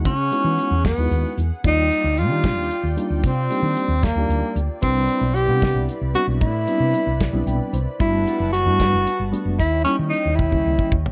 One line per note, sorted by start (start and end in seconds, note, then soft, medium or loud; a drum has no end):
0.00 0.12 G#3 medium
0.00 0.12 B3 medium
0.00 0.13 D#4 medium
0.00 0.13 E4 medium
0.00 0.13 F#4 medium
0.00 1.61 G#4 medium
0.00 1.61 F#5 medium
0.05 0.30 C#3 medium
0.05 0.81 C#4 medium
0.05 kick medium
0.05 closed hi-hat medium
0.32 0.74 G#3 medium
0.32 0.74 B3 medium
0.32 0.74 D#4 medium
0.32 0.75 E4 medium
0.32 0.75 F#4 medium
0.32 closed hi-hat medium
0.44 0.57 E3 medium
0.59 closed hi-hat medium
0.71 0.96 E2 medium
0.85 1.41 B3 medium
0.85 kick medium
0.85 snare loud
0.85 closed hi-hat medium
0.97 1.10 D#2 medium
0.97 1.40 G#3 medium
0.97 1.40 B3 medium
0.97 1.41 D#4 medium
0.97 1.41 E4 medium
0.97 1.41 F#4 medium
1.11 1.23 D#2 medium
1.11 closed hi-hat soft
1.37 1.50 E2 medium
1.37 closed hi-hat medium
1.64 1.89 D#2 medium
1.64 2.06 G3 medium
1.64 2.07 A#3 medium
1.64 2.07 D#4 medium
1.64 2.20 D#4 loud
1.64 4.79 F4 medium
1.64 2.07 F4 medium
1.64 7.96 D5 medium
1.64 2.07 D5 medium
1.64 4.79 G5 medium
1.64 kick loud
1.64 closed hi-hat medium
1.91 closed hi-hat medium
2.04 2.30 D2 medium
2.17 2.98 F4 medium
2.17 closed hi-hat medium
2.30 2.56 D#3 medium
2.30 2.73 G3 medium
2.30 2.73 A#3 medium
2.30 2.73 D4 medium
2.30 2.73 D#4 medium
2.30 2.74 G4 medium
2.44 kick medium
2.44 snare loud
2.44 closed hi-hat medium
2.56 2.69 D#2 medium
2.71 closed hi-hat medium
2.83 2.96 D#2 medium
2.96 3.30 G3 medium
2.96 3.31 A#3 medium
2.96 3.31 D4 medium
2.96 3.31 D#4 medium
2.96 3.31 F4 medium
2.96 closed hi-hat medium
3.10 3.22 D2 medium
3.23 3.48 C3 medium
3.23 4.06 C4 medium
3.23 kick loud
3.23 closed hi-hat medium
3.50 3.92 G3 medium
3.50 3.92 A#3 medium
3.50 3.93 D4 medium
3.50 3.93 D#4 medium
3.50 3.93 G4 medium
3.50 closed hi-hat medium
3.62 3.75 D#3 medium
3.77 closed hi-hat medium
3.88 4.13 D#2 medium
4.03 4.63 A#3 medium
4.03 kick medium
4.03 snare loud
4.03 closed hi-hat medium
4.15 4.28 D2 medium
4.15 4.59 G3 medium
4.15 4.59 A#3 medium
4.15 4.59 D4 medium
4.15 4.59 D#4 medium
4.15 4.59 G4 medium
4.29 4.41 D2 medium
4.29 closed hi-hat medium
4.56 4.68 D2 medium
4.56 closed hi-hat medium
4.81 5.07 C2 medium
4.81 5.25 G3 medium
4.81 5.36 C4 medium
4.81 5.25 C4 medium
4.81 5.25 D4 medium
4.81 7.96 E4 medium
4.81 5.25 E4 medium
4.81 7.97 B4 medium
4.81 5.25 B4 medium
4.81 7.97 B5 medium
4.81 kick medium
4.81 closed hi-hat medium
5.09 closed hi-hat medium
5.21 5.49 B1 medium
5.35 5.88 G4 medium
5.35 closed hi-hat medium
5.48 5.76 C3 medium
5.48 5.91 G3 medium
5.48 5.91 B3 medium
5.48 5.91 C4 medium
5.48 5.91 D4 medium
5.48 5.91 F#5 medium
5.62 kick medium
5.62 snare loud
5.62 closed hi-hat medium
5.74 5.87 C2 medium
5.89 closed hi-hat medium
6.01 6.14 C2 medium
6.14 6.48 G3 medium
6.14 6.48 B3 medium
6.14 6.49 C4 medium
6.14 6.49 D4 medium
6.14 6.27 F#4 medium
6.14 6.49 F#4 medium
6.14 closed hi-hat medium
6.27 6.40 B1 medium
6.41 6.66 A2 medium
6.41 7.43 E4 medium
6.41 kick medium
6.41 closed hi-hat medium
6.67 7.10 G3 medium
6.67 7.10 B3 medium
6.67 7.10 C4 medium
6.67 7.10 D4 medium
6.67 7.11 E4 medium
6.67 closed hi-hat medium
6.80 6.93 C3 medium
6.94 closed hi-hat medium
7.07 7.31 C2 medium
7.20 kick medium
7.20 snare loud
7.20 closed hi-hat medium
7.33 7.46 B1 medium
7.33 7.76 G3 medium
7.33 7.76 B3 medium
7.33 7.76 C4 medium
7.33 7.77 D4 medium
7.33 7.77 E4 medium
7.46 7.59 B1 medium
7.46 7.72 G5 medium
7.46 closed hi-hat medium
7.73 7.85 C2 medium
7.73 7.98 C5 medium
7.73 closed hi-hat medium
7.99 8.24 G1 medium
7.99 8.42 G3 medium
7.99 9.58 G3 medium
7.99 8.42 A3 medium
7.99 8.42 B3 medium
7.99 8.43 D4 medium
7.99 8.50 E4 medium
7.99 8.43 F#4 medium
7.99 9.58 B4 medium
7.99 9.58 F#5 medium
7.99 9.58 A5 medium
7.99 kick loud
7.99 closed hi-hat medium
8.27 closed hi-hat medium
8.40 8.67 F#1 medium
8.53 9.28 F#4 loud
8.53 closed hi-hat medium
8.66 8.94 G2 medium
8.66 9.08 G3 medium
8.66 9.09 A3 medium
8.66 9.09 B3 medium
8.66 9.09 D4 medium
8.66 9.09 E4 medium
8.80 kick medium
8.80 snare loud
8.80 closed hi-hat medium
8.93 9.05 G1 medium
9.07 closed hi-hat medium
9.20 9.32 G1 medium
9.32 9.59 G3 medium
9.32 9.59 A3 medium
9.32 9.59 B3 medium
9.32 9.59 D4 medium
9.32 9.59 F#4 medium
9.32 closed hi-hat medium
9.45 9.58 F#1 medium
9.59 9.84 D#2 medium
9.59 9.84 E4 loud
9.59 11.12 C#5 medium
9.59 11.12 D#5 medium
9.59 11.12 G5 medium
9.59 kick medium
9.59 closed hi-hat medium
9.84 10.28 G3 medium
9.84 10.28 A#3 medium
9.84 9.97 C#4 medium
9.84 10.28 C#4 medium
9.84 10.29 D#4 medium
9.84 10.29 E4 medium
9.84 closed hi-hat medium
9.99 10.11 D#3 medium
10.10 10.37 D#4 medium
10.10 closed hi-hat medium
10.25 10.50 D#2 medium
10.36 10.97 E4 medium
10.36 kick medium
10.36 high tom medium
10.51 10.64 C#2 medium
10.51 10.95 D#3 medium
10.51 10.94 G3 medium
10.51 10.94 A#3 medium
10.51 10.94 C#4 medium
10.51 10.95 E4 medium
10.51 kick medium
10.66 10.78 C#2 medium
10.79 kick medium
10.92 11.04 D#2 medium
10.92 kick medium
11.06 floor tom medium